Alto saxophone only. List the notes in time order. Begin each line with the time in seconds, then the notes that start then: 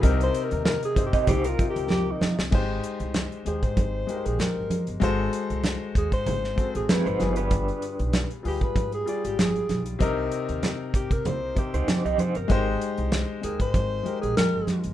0.03 A#4
0.23 C5
0.44 A#4
0.65 A#4
0.85 G#4
1.06 G4
1.28 G4
1.48 F4
1.70 G4
1.90 G4
2.11 D#4
3.47 G#4
3.63 C5
4.26 G#4
4.40 A#4
5.98 G#4
6.13 C5
6.76 G#4
6.90 B4
8.47 G4
8.63 B4
8.94 G#4
9.26 G4
9.40 G#4
10.95 G4
11.12 A#4
11.27 C5
11.59 G4
13.44 G#4
13.61 C5
14.21 G#4
14.37 A#4